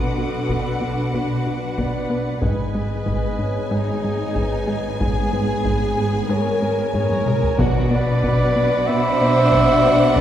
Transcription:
0.00 2.39 B1 soft
0.00 2.39 B2 soft
0.00 0.45 C4 soft
0.00 2.39 D4 soft
0.00 1.11 F#4 medium
0.00 1.15 A4 medium
0.00 2.39 B4 soft
0.00 2.39 F#5 soft
0.00 0.45 C6 soft
0.00 0.40 D6 soft
0.00 0.40 D#6 soft
0.18 0.37 B2 medium
0.40 1.43 D6 soft
0.49 0.69 B2 medium
0.49 taiko medium
0.81 1.01 B2 soft
1.13 1.34 B2 medium
1.13 1.78 F#4 soft
1.13 3.03 B4 soft
1.13 1.79 B4 medium
1.47 1.66 B2 soft
1.78 1.98 B2 medium
1.78 2.41 B4 medium
1.78 2.42 D5 medium
1.78 taiko medium
2.10 2.30 B3 medium
2.41 7.59 G#1 soft
2.41 2.61 G#2 medium
2.41 7.59 G#2 soft
2.41 7.55 B3 medium
2.41 7.55 G#4 medium
2.41 3.69 B4 medium
2.41 3.73 D#5 medium
2.41 7.55 G#5 medium
2.41 taiko medium
2.75 2.94 G#2 medium
3.06 3.26 G#2 medium
3.06 taiko medium
3.39 3.58 G#2 medium
3.39 5.29 C#5 soft
3.71 3.91 G#2 medium
3.71 5.02 D#4 medium
3.71 4.73 G#4 medium
4.04 4.24 G#2 medium
4.36 4.55 G#2 medium
4.36 6.26 B4 soft
4.36 taiko medium
4.67 4.87 G#3 medium
5.01 5.20 G#2 medium
5.01 6.28 G#4 medium
5.01 6.32 B4 medium
5.01 taiko medium
5.33 5.52 G#2 medium
5.65 5.84 G#2 medium
5.65 taiko medium
5.97 6.17 G#2 medium
6.29 6.49 G#2 medium
6.29 6.93 A#4 medium
6.29 6.93 C#5 medium
6.62 6.82 G#2 medium
6.93 7.14 G#2 medium
6.93 7.58 A#4 medium
6.93 7.60 C#5 loud
6.93 taiko low-mid medium
7.10 taiko high medium
7.26 7.47 G#3 medium
7.26 taiko mid medium
7.43 taiko low medium
7.58 10.21 B1 medium
7.58 7.78 B2 medium
7.58 8.52 B2 medium
7.58 10.21 B2 medium
7.58 10.21 D4 medium
7.58 7.91 F#4 medium
7.58 7.92 B4 medium
7.58 10.21 D5 medium
7.58 10.21 F#5 medium
7.58 10.21 B5 medium
7.58 10.21 D6 medium
7.58 taiko loud
7.91 8.10 B2 medium
7.91 8.89 B4 medium
7.91 8.88 D5 loud
8.23 8.43 B2 medium
8.23 taiko medium
8.56 8.75 B2 medium
8.87 9.08 B2 medium
8.87 10.17 C5 loud
8.87 10.17 E5 loud
8.87 10.21 B5 medium
9.21 9.40 B2 medium
9.52 9.72 B2 medium
9.52 taiko medium
9.84 10.05 B3 medium
9.84 10.21 D5 medium
10.15 10.21 B4 loud
10.15 10.21 D5 loud
10.15 taiko medium

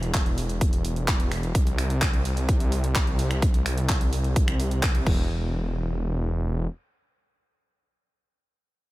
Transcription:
0.00 1.53 E1 medium
0.00 closed hi-hat soft
0.14 kick loud
0.14 clap loud
0.14 closed hi-hat medium
0.26 closed hi-hat soft
0.38 open hi-hat medium
0.49 closed hi-hat soft
0.61 kick loud
0.61 closed hi-hat medium
0.73 closed hi-hat soft
0.85 open hi-hat loud
0.96 closed hi-hat soft
1.08 kick loud
1.08 clap loud
1.08 closed hi-hat medium
1.20 closed hi-hat soft
1.32 finger snap medium
1.32 open hi-hat medium
1.43 closed hi-hat soft
1.55 5.06 C2 medium
1.55 kick loud
1.55 closed hi-hat loud
1.67 closed hi-hat soft
1.78 finger snap medium
1.78 open hi-hat loud
1.90 closed hi-hat soft
2.02 kick loud
2.02 clap loud
2.02 closed hi-hat loud
2.14 closed hi-hat soft
2.25 open hi-hat medium
2.37 closed hi-hat soft
2.49 kick loud
2.49 closed hi-hat loud
2.60 closed hi-hat soft
2.72 open hi-hat loud
2.84 closed hi-hat soft
2.95 kick loud
2.95 clap loud
2.95 closed hi-hat loud
3.07 closed hi-hat soft
3.19 open hi-hat medium
3.31 finger snap medium
3.31 closed hi-hat soft
3.42 kick loud
3.42 closed hi-hat loud
3.54 closed hi-hat soft
3.66 finger snap medium
3.66 open hi-hat loud
3.78 closed hi-hat soft
3.89 kick loud
3.89 clap loud
3.89 closed hi-hat loud
4.01 closed hi-hat soft
4.13 open hi-hat medium
4.24 closed hi-hat soft
4.36 kick loud
4.36 closed hi-hat loud
4.48 finger snap medium
4.48 closed hi-hat soft
4.60 open hi-hat loud
4.71 closed hi-hat soft
4.83 kick loud
4.83 clap loud
4.83 closed hi-hat medium
4.95 closed hi-hat soft
5.06 6.67 E1 loud
5.06 kick loud
5.06 crash medium

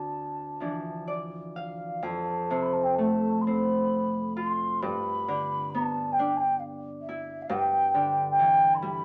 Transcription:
0.00 2.10 D2 soft
0.00 0.90 C4 soft
0.00 0.61 D4 soft
0.00 0.53 E4 soft
0.00 1.10 A5 medium
0.60 2.10 E3 soft
0.60 2.10 F3 soft
0.60 3.41 D4 soft
1.07 2.92 D5 soft
1.56 3.23 F5 soft
1.56 2.05 F5 medium
2.02 4.88 F2 soft
2.02 2.64 A5 medium
2.50 4.88 C3 soft
2.62 2.75 B5 medium
2.73 2.85 A5 medium
2.84 2.96 G5 medium
2.95 6.31 A3 soft
2.95 3.01 A5 medium
3.02 3.43 A5 medium
3.41 4.36 B5 medium
3.41 3.46 C6 medium
3.47 5.80 C4 soft
4.37 6.89 F4 soft
4.37 4.82 C6 medium
4.81 7.48 G2 medium
4.81 5.72 B5 medium
5.28 7.55 D3 soft
5.70 6.14 A5 medium
5.75 8.85 B3 soft
6.12 6.38 G5 medium
6.19 8.99 D4 medium
6.37 6.57 G5 medium
6.37 6.40 A5 medium
6.57 6.61 F5 medium
6.57 6.60 G5 medium
7.01 7.44 E5 medium
7.09 9.05 E4 medium
7.42 8.30 G5 loud
7.49 9.05 G2 medium
7.94 9.05 D3 medium
8.31 8.76 G5 medium
8.39 9.05 E3 medium
8.74 9.05 B5 loud
8.74 8.78 C6 medium
8.82 9.05 G3 medium

